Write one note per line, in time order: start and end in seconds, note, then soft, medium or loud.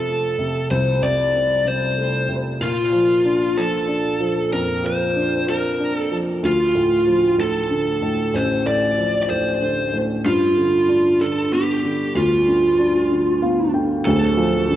0.00 0.66 F2 medium
0.00 0.39 C3 soft
0.00 0.66 C4 soft
0.00 0.66 A4 medium
0.07 1.30 A3 soft
0.39 1.00 C3 soft
0.71 2.57 C2 medium
0.71 1.03 C5 medium
1.02 1.63 C3 soft
1.02 1.68 D5 medium
1.34 2.57 C4 soft
1.65 2.27 C3 soft
1.65 2.34 C5 medium
1.97 2.59 A3 soft
2.29 2.60 C3 soft
2.61 4.48 A#2 medium
2.61 3.60 F4 medium
2.92 3.55 F3 soft
3.25 3.86 D4 soft
3.57 4.19 F3 soft
3.57 4.53 A4 medium
3.88 5.11 D4 soft
4.20 4.82 F3 soft
4.52 6.39 F2 medium
4.52 4.85 A#4 medium
4.83 5.46 F3 soft
4.83 5.45 C5 medium
5.15 5.78 D4 soft
5.48 6.10 F3 soft
5.48 5.96 A#4 medium
5.79 6.41 D4 soft
5.96 6.16 A4 medium
6.12 6.42 F3 soft
6.43 8.30 D2 medium
6.43 7.36 F4 medium
6.75 7.37 A2 soft
7.06 8.30 F3 soft
7.38 8.01 A2 soft
7.38 8.38 A4 medium
7.70 8.94 D3 soft
8.02 8.64 A2 soft
8.34 10.21 A1 medium
8.34 8.67 C5 medium
8.66 9.29 A2 soft
8.66 9.22 D5 medium
8.97 10.21 F3 soft
9.23 9.29 D5 medium
9.30 9.92 A2 soft
9.30 9.97 C5 medium
9.62 10.23 D3 soft
9.93 10.24 A2 soft
10.25 12.11 G2 medium
10.25 11.23 F4 medium
10.57 11.19 D3 medium
10.88 12.12 D4 soft
11.21 11.82 D3 soft
11.21 11.53 A4 medium
11.52 12.75 B3 soft
11.52 12.12 G4 medium
11.83 12.46 D3 soft
12.15 14.02 D2 medium
12.15 13.71 F4 medium
12.47 13.10 D3 soft
12.79 14.02 D4 soft
13.11 13.73 D3 soft
13.42 14.04 B3 soft
13.42 13.72 F5 soft
13.74 14.05 D3 soft
13.74 14.04 G5 medium
14.05 14.76 D1 medium
14.05 14.76 D2 medium
14.05 14.76 A4 medium
14.37 14.76 F3 medium
14.69 14.76 D3 soft